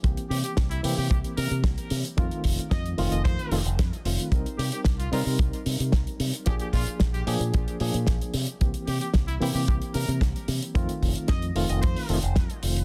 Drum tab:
HH |xxoxxxooxxoxxxox|xxoxxxoxxxoxxxox|xxoxxxooxxoxxxox|xxoxxxoxxxoxxxox|
SD |----o-------o---|----o-------o---|----o-------o---|----o-------o---|
BD |o---o---o---o---|o-o-o---o---o---|o---o---o---o---|o-o-o---o---o---|

HH |xxoxxxooxxoxxxox|xxoxxxoxxooxxxox|
SD |----o-------o---|----o-------o---|
BD |o---o---o---o---|o-o-o---o---o---|